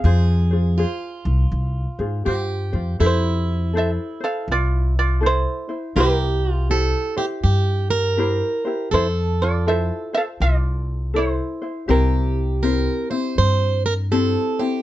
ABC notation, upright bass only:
X:1
M:4/4
L:1/8
Q:"Swing" 1/4=81
K:Fm
V:1 name="Upright bass" clef=bass
F,,3 C,, C,, A,, G,, F,, | [K:F] F,,4 C,,4 | C,,4 G,,4 | F,,4 C,,4 |
C,,4 G,,4 |]